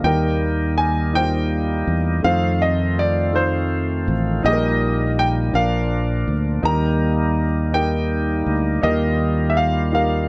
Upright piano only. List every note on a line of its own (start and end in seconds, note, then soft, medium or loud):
0.04 1.11 D#3 soft
0.04 0.82 D#4 medium
0.04 0.83 G4 medium
0.04 0.83 A#4 medium
1.13 1.92 D#4 medium
1.13 1.21 F4 soft
1.13 1.93 C5 medium
1.21 1.96 G4 soft
2.23 3.01 A3 medium
2.23 3.02 C4 medium
2.23 3.02 D#4 medium
2.23 3.03 F4 medium
2.23 3.03 C5 medium
3.33 4.11 A3 medium
3.33 4.12 C4 soft
3.33 4.12 D#4 soft
3.33 4.13 F4 soft
3.33 4.13 C5 medium
4.43 5.50 A#2 medium
4.43 5.22 D#4 medium
4.43 5.22 G4 medium
4.43 4.52 G#4 medium
4.53 5.26 A#4 medium
5.53 6.60 A#2 soft
5.53 6.31 D4 soft
5.53 6.32 F4 soft
5.53 6.33 A#4 medium
6.63 7.70 D#3 soft
6.63 7.41 D#4 medium
6.63 7.42 G4 medium
6.63 7.43 A#4 medium
7.72 8.51 D#4 soft
7.72 8.51 G4 soft
7.72 8.52 A#4 medium
8.82 9.89 D#3 soft
8.82 9.61 D#4 medium
8.82 9.61 G4 medium
8.82 9.62 A#4 medium
9.92 10.28 D#4 medium
9.92 10.28 G4 soft
9.92 10.28 A#4 medium